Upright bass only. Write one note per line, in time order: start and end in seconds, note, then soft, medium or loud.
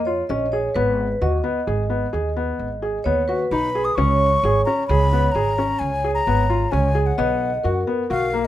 0.00 0.21 F2 medium
0.30 0.67 A#1 medium
0.75 1.13 G#1 loud
1.21 1.40 D#2 loud
1.67 2.05 G#1 medium
2.14 2.51 D#2 medium
2.59 2.97 G#1 medium
3.05 3.43 D#2 medium
3.51 3.89 B1 medium
3.97 4.35 C#2 loud
4.43 4.62 G#1 loud
4.89 5.27 C#2 loud
5.35 5.72 G#1 medium
5.81 6.19 C#2 medium
6.27 6.65 G#1 medium
6.73 7.11 C#2 loud
7.19 7.56 B1 loud
7.65 7.84 F#2 medium
8.11 8.47 B1 medium